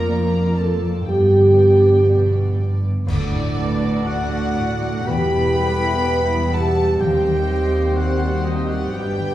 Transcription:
0.00 1.07 F1 medium
0.00 1.06 F2 medium
0.00 1.09 F2 medium
0.00 1.11 F2 medium
0.00 0.80 F3 medium
0.00 0.55 A#3 medium
0.00 1.08 A#3 medium
0.00 0.31 D4 soft
0.00 1.04 F4 medium
0.00 0.54 A#4 loud
0.00 1.05 D5 medium
0.00 0.54 A#5 medium
0.07 1.03 A#3 soft
0.07 1.03 D4 soft
0.07 2.06 D5 soft
0.07 1.03 D5 soft
0.32 1.81 D4 medium
0.56 1.07 A4 medium
0.56 1.07 A5 medium
0.81 1.11 F3 soft
1.05 2.84 G1 medium
1.05 1.96 G2 medium
1.05 2.05 G2 medium
1.05 3.12 G2 medium
1.05 2.88 B3 medium
1.05 2.88 D4 medium
1.05 2.58 G4 medium
1.05 2.84 D5 medium
1.05 2.58 G5 medium
1.32 2.83 D3 soft
1.57 2.58 B3 soft
1.82 2.32 D4 soft
2.07 2.55 B2 medium
2.07 3.04 B3 soft
2.07 3.04 D4 soft
2.07 4.05 D5 soft
2.07 3.04 D5 soft
2.33 3.31 D4 soft
2.58 3.08 G2 medium
2.58 3.12 B3 soft
2.84 3.07 D3 soft
3.07 5.03 D2 medium
3.07 5.11 D3 medium
3.07 5.03 A3 medium
3.07 4.08 D4 medium
3.07 5.03 D4 medium
3.07 5.03 F#4 medium
3.07 4.02 A4 loud
3.07 3.54 A4 medium
3.07 4.01 D5 medium
3.07 5.03 D5 medium
3.07 4.08 D5 medium
3.07 concert bass drum medium
3.07 crash medium
3.31 3.71 A2 medium
3.31 5.11 D4 medium
3.56 3.95 A3 medium
3.56 5.12 A3 medium
3.56 4.06 B4 medium
3.81 4.20 F#4 medium
3.81 5.11 F#4 medium
4.05 5.09 F#4 medium
4.05 5.07 A4 medium
4.05 4.45 D5 medium
4.05 5.07 D5 medium
4.05 5.11 D5 medium
4.05 5.07 F#5 medium
4.05 5.09 F#5 loud
4.29 4.71 F#4 medium
4.29 5.11 A4 medium
4.55 4.97 A2 medium
4.55 5.12 F#5 medium
4.81 5.07 A3 medium
4.81 5.11 D6 medium
5.06 7.00 E1 medium
5.06 6.96 E2 medium
5.06 7.00 E2 medium
5.06 7.05 E3 medium
5.06 9.35 G3 medium
5.06 7.00 B3 medium
5.06 7.01 E4 medium
5.06 6.99 G4 medium
5.06 5.57 G4 medium
5.06 6.54 B4 loud
5.06 6.50 G5 loud
5.06 6.52 B5 medium
5.06 6.54 B5 loud
5.32 5.71 B2 soft
5.32 7.48 G3 medium
5.56 5.95 G3 medium
5.56 7.04 E4 medium
5.56 6.05 A4 medium
5.80 6.19 E4 soft
6.04 6.43 B4 medium
6.04 6.52 B4 medium
6.29 6.67 E4 soft
6.29 7.05 E5 medium
6.52 6.91 B2 medium
6.52 7.00 G4 medium
6.52 7.00 A4 medium
6.52 7.00 F#5 medium
6.52 7.02 A5 medium
6.52 7.01 A5 medium
6.77 7.01 G3 medium
7.00 8.93 D#2 medium
7.00 8.89 D#2 medium
7.00 8.93 D#2 medium
7.00 8.97 D#3 medium
7.00 8.94 C4 medium
7.00 9.35 G4 medium
7.00 7.97 G4 medium
7.00 7.49 G4 medium
7.00 8.93 C5 medium
7.00 7.94 D#5 medium
7.00 7.95 G5 medium
7.00 7.96 G5 medium
7.25 7.63 D#3 soft
7.25 8.97 D#4 medium
7.49 9.35 G3 medium
7.49 7.87 G3 soft
7.49 8.94 C5 medium
7.73 8.11 G4 medium
7.95 8.46 F#4 medium
7.95 8.97 C5 medium
7.95 8.45 D5 medium
7.95 8.44 F#5 medium
8.44 8.84 D#3 soft
8.44 8.70 D#4 medium
8.44 8.69 C5 medium
8.44 8.70 D#5 medium
8.44 8.69 D#5 medium
8.68 8.93 G3 soft
8.68 8.93 F#4 medium
8.68 8.91 D5 medium
8.68 8.96 F#5 medium
8.68 8.93 F#5 medium
8.68 8.97 C6 medium
8.92 9.35 G1 medium
8.92 9.35 G2 medium
8.92 9.35 D4 medium
8.92 9.35 G4 medium
8.92 9.35 B4 medium
8.92 9.35 D5 medium
8.92 9.35 G5 loud
8.92 9.35 G5 medium
9.17 9.35 D3 soft

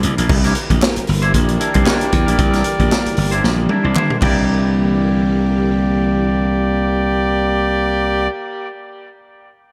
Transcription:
0.00 0.16 C2 medium
0.00 0.26 D3 medium
0.00 0.26 E3 medium
0.00 0.26 G3 medium
0.00 0.26 A#3 medium
0.00 muted clean electric guitar stroke soft
0.00 closed hi-hat medium
0.17 0.28 A#1 medium
0.17 0.28 D4 soft
0.17 0.29 E4 soft
0.17 0.30 A#4 medium
0.17 closed hi-hat medium
0.29 0.52 C2 loud
0.29 4.18 D3 medium
0.29 4.18 E3 medium
0.29 4.18 G3 medium
0.29 4.18 A#3 loud
0.29 muted clean electric guitar stroke soft
0.29 kick loud
0.29 crash loud
0.44 0.54 D4 medium
0.44 0.54 E4 medium
0.44 0.55 A#4 medium
0.44 snare soft
0.44 closed hi-hat medium
0.55 muted clean electric guitar stroke soft
0.55 closed hi-hat medium
0.70 0.80 A#1 medium
0.70 muted clean electric guitar stroke soft
0.70 kick medium
0.70 closed hi-hat soft
0.81 muted clean electric guitar stroke soft
0.81 snare loud
0.81 clap medium
0.96 muted clean electric guitar stroke soft
0.96 muted slap bass stroke soft
0.96 closed hi-hat medium
1.07 1.31 G1 medium
1.07 open hi-hat medium
1.22 1.32 D4 medium
1.22 1.33 E4 medium
1.22 1.34 C5 medium
1.22 closed hi-hat soft
1.34 1.57 A#1 loud
1.34 4.18 G4 medium
1.34 4.18 A#4 medium
1.34 4.18 D5 medium
1.34 muted clean electric guitar stroke soft
1.34 kick medium
1.34 closed hi-hat medium
1.48 muted clean electric guitar stroke soft
1.48 closed hi-hat soft
1.59 1.74 D4 medium
1.59 1.74 E4 medium
1.59 1.74 A#4 medium
1.59 closed hi-hat medium
1.74 1.85 C2 medium
1.74 1.84 D4 medium
1.74 1.85 E4 medium
1.74 1.85 C5 medium
1.74 kick medium
1.74 closed hi-hat medium
1.85 2.06 D4 medium
1.85 2.07 E4 medium
1.85 2.07 C5 medium
1.85 snare loud
1.85 clap medium
2.01 closed hi-hat medium
2.12 2.25 E2 loud
2.12 muted clean electric guitar stroke medium
2.12 kick loud
2.12 closed hi-hat medium
2.26 2.37 A#1 medium
2.26 2.37 D4 soft
2.26 2.38 E4 medium
2.26 2.38 A#4 medium
2.26 closed hi-hat medium
2.38 2.61 C2 loud
2.38 muted clean electric guitar stroke soft
2.38 kick loud
2.38 closed hi-hat medium
2.53 2.63 D4 medium
2.53 2.64 E4 medium
2.53 2.65 A#4 medium
2.53 snare soft
2.53 closed hi-hat medium
2.64 muted clean electric guitar stroke soft
2.64 closed hi-hat medium
2.79 2.90 A#1 medium
2.79 muted clean electric guitar stroke medium
2.79 kick medium
2.79 closed hi-hat soft
2.91 muted clean electric guitar stroke soft
2.91 snare loud
2.91 clap medium
3.06 muted clean electric guitar stroke soft
3.06 muted slap bass stroke soft
3.06 closed hi-hat medium
3.17 3.40 G1 medium
3.17 open hi-hat medium
3.31 3.42 D4 medium
3.31 3.43 E4 medium
3.31 3.45 C5 medium
3.31 closed hi-hat soft
3.44 3.66 A#1 loud
3.44 muted clean electric guitar stroke soft
3.44 snare medium
3.58 muted clean electric guitar stroke soft
3.69 3.84 D4 medium
3.69 3.84 E4 medium
3.69 3.83 A#4 medium
3.69 high tom medium
3.84 3.94 C2 medium
3.84 3.95 D4 medium
3.84 3.96 E4 medium
3.84 3.96 C5 medium
3.95 4.16 D4 medium
3.95 4.16 E4 medium
3.95 4.17 C5 medium
3.95 clap medium
3.95 mid tom loud
4.10 mid tom medium
4.21 8.27 C2 medium
4.21 8.27 D3 medium
4.21 8.27 E3 medium
4.21 8.27 G3 medium
4.21 8.27 A#3 medium
4.21 8.30 D4 medium
4.21 8.33 E4 medium
4.21 8.27 G4 medium
4.21 8.27 D5 medium
4.21 kick loud
4.21 clap medium
4.21 crash medium
4.26 8.35 A#4 medium

